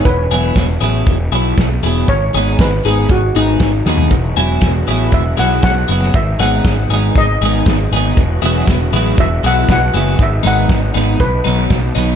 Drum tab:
HH |x-x-x-x-x-x-x-x-|x-x-x-x-x-x-x---|x-x-x-x-x-x-x-x-|x-x-x-x-x-x-x-x-|
SD |----o-------o---|----o-------o-o-|--o-o-------o--o|--o-o-------o---|
FT |----------------|---------------o|----------------|----------------|
BD |o---o---o---o---|o---o---o---o---|o---o---o---o---|o---o---o---o---|

HH |x-x-x-x-x-x-x-x-|x-x-x-x-x-x-x-x-|
SD |----o-------o---|--o-o-------o---|
FT |----------------|----------------|
BD |o---o---o---o---|o---o---o---o---|